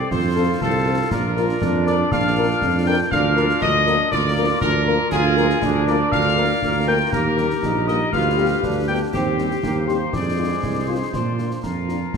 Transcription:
Already playing: woodwind section A4, trumpet section D5
0.11 tuba F2, trombone section F4, woodwind section A4 C5, trumpet section C5, piccolo C6, concert bass drum, snare
0.36 french horn section F3 C4 A4
0.61 tuba C2, trumpet section A4, woodwind section A4 C5, piccolo A5, concert bass drum, snare
0.86 french horn section F3 C4 A4
1.11 tuba A#1, woodwind section F4 D5, trumpet section A#4, piccolo A#5, concert bass drum, snare, crash
1.37 french horn section F3 D4 A#4, snare
1.49 snare
1.61 tuba F2, trombone section D4, concert bass drum, snare
1.86 french horn section F3 D4 A#4, trumpet section D5, piccolo D6, snare
2.11 tuba A#1, woodwind section F4 D5, trumpet section F5, piccolo F6, concert bass drum, snare
2.37 french horn section F3 D4 A#4
2.62 tuba F2, concert bass drum, snare
2.86 french horn section F3 D4 A#4, trumpet section G5, piccolo G6
3.11 tuba D2, trombone section D4, woodwind section F4 A#4, trumpet section F5, piccolo F6, concert bass drum, snare
3.37 french horn section F3 A#3 A#4, snare
3.49 snare
3.62 tuba D2, trumpet section D#5, piccolo D#6, concert bass drum, snare
3.87 french horn section F3 A#3 A#4, snare
4.12 tuba D2, trombone section A#3, woodwind section F4 A#4, trumpet section D5, piccolo D6, concert bass drum, snare
4.37 french horn section F3 A#3 A#4
4.61 tuba D2, trombone section D4, woodwind section F4 A#4, trumpet section A#4, piccolo A#5, concert bass drum, snare
4.87 french horn section F3 A#3 A#4
5.11 tuba D2, trombone section F4, woodwind section F4 A#4, trumpet section G#4, piccolo G#5, concert bass drum, snare, crash
5.37 french horn section F3 A#3 A#4, snare
5.50 snare
5.62 tuba D2, trombone section D4, concert bass drum, snare
5.87 french horn section F3 A#3 A#4, trumpet section D5, piccolo D6, snare
6.12 tuba D2, woodwind section F4 A#4, trumpet section F5, piccolo F6, concert bass drum, snare
6.37 french horn section F3 A#3 A#4
6.62 tuba D2, trombone section A#3, concert bass drum, snare
6.87 french horn section F3 A#3 A#4, trumpet section G5, piccolo G6
7.12 tuba D#2, trombone section A#3, woodwind section G4 A#4, trumpet section A#4, piccolo A#5, concert bass drum, snare
7.37 french horn section G3 A#3 A#4, snare
7.50 snare
7.63 tuba A#1, trombone section D#4, concert bass drum, snare
7.87 french horn section G3 A#3 A#4, trumpet section D#5, piccolo D#6, snare
8.13 tuba D2, trombone section F4, woodwind section G4 B4, trumpet section F5, piccolo F6, concert bass drum, snare
8.37 french horn section G3 B3 G4
8.63 tuba D2, trombone section D4, concert bass drum, snare
8.88 french horn section G3 B3 G4, trumpet section G5, piccolo G6
9.13 tuba D#2, trombone section C4, woodwind section G4 C5, trumpet section G4, piccolo G5, concert bass drum, snare, crash
9.37 french horn section G3 C4 G4, snare
9.51 snare
9.63 tuba D#2, trombone section A#3, concert bass drum, snare
9.87 french horn section G3 C4 G4, trumpet section C5, piccolo C6, snare
10.13 tuba F2, trombone section G#3, woodwind section G#4 C5, trumpet section D5, piccolo D6, concert bass drum, snare
10.38 french horn section G#3 C4 F4
10.63 tuba C2, concert bass drum, snare
10.87 french horn section G#3 C4 F4, trumpet section C5, piccolo C6
11.13 tuba A#2, trombone section F3, woodwind section F4 D5, trumpet section C5, piccolo C6, concert bass drum, snare
11.38 french horn section A#3 D4 F4, snare
11.51 snare
11.63 tuba F2, woodwind section F4, trumpet section A#4, piccolo A#5, concert bass drum, snare
11.89 french horn section A#3 D4 F4, snare
12.13 tuba A#2, concert bass drum, snare

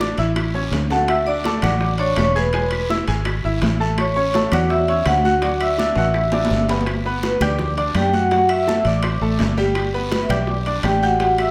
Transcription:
Already playing: fingered electric bass A1
0.00 grand piano D4 D5 D6, high bongo, high conga, low timbale, short guiro
0.17 fingered electric bass A1, grand piano E4 E5 E6, high conga, high timbale, short guiro
0.36 high bongo, high conga, high timbale, long guiro, claves
0.54 grand piano C#4 C#5 C#6, high bongo, high conga
0.71 fingered electric bass D2, low bongo, high conga, high timbale, low timbale, short guiro
0.90 grand piano A3 A4 A5, vibraphone F#4 F#5, low bongo, high conga, short guiro
1.08 vibraphone E5 E6, high bongo, high conga, high timbale, long guiro, claves
1.26 grand piano D4 D5 D6, vibraphone D5 D6, high bongo, high conga
1.44 grand piano A3 A4 A5, high bongo, high conga, high timbale, low timbale, short guiro
1.62 fingered electric bass A1, grand piano F#3 F#4 F#5, vibraphone D5 D6, high bongo, high conga, low conga, high timbale, short guiro, claves
1.81 high bongo, high conga, long guiro
1.98 grand piano D4 D5 D6, vibraphone C#5 C#6, high conga, high timbale
2.16 fingered electric bass E1, vibraphone C#5 C#6, high bongo, low bongo, high conga, high timbale, low timbale, short guiro, claves
2.35 grand piano G#4 G#5 G#6, vibraphone B4 B5, high bongo, short guiro
2.53 grand piano G#3 G#4 G#5, high bongo, high conga, high timbale, long guiro
2.71 high bongo, high conga, high timbale, claves
2.89 grand piano E4 E5 E6, high bongo, high conga, low timbale, short guiro
3.08 fingered electric bass G#1, grand piano G#4 G#5 G#6, high conga, high timbale, short guiro
3.25 high bongo, high conga, high timbale, long guiro, claves
3.44 fingered electric bass G#1, grand piano E4 E5 E6, high bongo, high conga
3.62 fingered electric bass A1, high bongo, low bongo, high conga, high timbale, low timbale, short guiro
3.80 grand piano A3 A4 A5, high bongo, short guiro
3.98 vibraphone C#5 C#6, high bongo, high conga, high timbale, long guiro, claves
4.15 grand piano C#4 C#5 C#6, vibraphone C#5 C#6, high bongo, high conga
4.34 grand piano A3 A4 A5, high bongo, high conga, high timbale, low timbale, short guiro
4.52 fingered electric bass E2, grand piano F#3 F#4 F#5, vibraphone D5 D6, high bongo, high conga, low conga, high timbale, short guiro, claves
4.70 vibraphone E5 E6, high bongo, high conga, long guiro
4.88 grand piano C#4 C#5 C#6, high conga, high timbale
5.05 fingered electric bass D2, vibraphone F#4 F#5, high bongo, low bongo, high conga, high timbale, low timbale, short guiro, claves
5.24 grand piano F#4 F#5 F#6, vibraphone F#4 F#5, high bongo, high conga, short guiro
5.42 grand piano F#3 F#4 F#5, vibraphone D5 D6, high bongo, high conga, high timbale, long guiro
5.60 vibraphone E5 E6, high bongo, high conga, high timbale, claves
5.78 grand piano D4 D5 D6, high bongo, high conga, low timbale, short guiro
5.95 fingered electric bass A1, grand piano F#4 F#5 F#6, high timbale, short guiro
6.14 high bongo, high conga, long guiro, claves
6.32 grand piano D4 D5 D6, high bongo, low timbale
6.45 high bongo, low timbale
6.50 fingered electric bass G1, high conga, short guiro
6.57 low bongo, low timbale
6.68 grand piano B3 B4 B5, low bongo, low timbale, short guiro
6.81 low timbale
6.86 high bongo, high timbale, long guiro, claves
7.05 grand piano B3 B4 B5, high bongo, high conga
7.23 vibraphone B4 B5, high bongo, high conga, high timbale, low timbale, short guiro
7.40 fingered electric bass D2, grand piano G4 G5 G6, vibraphone D5 D6, high bongo, high conga, low conga, high timbale, short guiro, claves
7.59 high bongo, high conga, low conga, long guiro
7.77 grand piano D4 D5 D6, high conga, high timbale
7.95 fingered electric bass F#2, vibraphone G4 G5, high bongo, low bongo, high conga, high timbale, low timbale, short guiro, claves
8.13 grand piano F#4 F#5 F#6, vibraphone F#4 F#5, high bongo, high conga, short guiro
8.31 grand piano F#3 F#4 F#5, vibraphone F#4 F#5, high bongo, high conga, high timbale, long guiro
8.49 vibraphone E5 E6, high bongo, high conga, high timbale, claves
8.67 grand piano A3 A4 A5, high bongo, high conga, low timbale, short guiro
8.85 fingered electric bass A1, vibraphone D5 D6, high conga, high timbale, short guiro
9.03 grand piano C4 C5 C6, high bongo, high conga, high timbale, long guiro, claves
9.21 fingered electric bass A1, grand piano A3 A4 A5, high bongo, high conga
9.39 fingered electric bass G1, high bongo, low bongo, high conga, high timbale, low timbale, short guiro
9.57 grand piano G3 G4 G5, high bongo, high conga, short guiro
9.75 high bongo, high timbale, long guiro, claves
9.94 grand piano B3 B4 B5, high bongo, high conga
10.12 vibraphone B4 B5, high bongo, high conga, high timbale, low timbale, short guiro
10.23 vibraphone E5
10.29 fingered electric bass B1, grand piano G4 G5 G6, vibraphone D5 D6, high bongo, high conga, low conga, high timbale, short guiro, claves
10.47 high bongo, high conga, long guiro
10.66 grand piano D4 D5 D6, high conga, high timbale
10.83 fingered electric bass A1, vibraphone G4 G5, high bongo, low bongo, high conga, high timbale, low timbale, short guiro, claves
11.02 vibraphone F#4 F#5, grand piano G4 G5 G6, high bongo, short guiro
11.20 grand piano G3 G4 G5, vibraphone F#4 F#5, high bongo, high conga, high timbale, long guiro
11.38 vibraphone E5 E6, high bongo, high conga, high timbale, claves

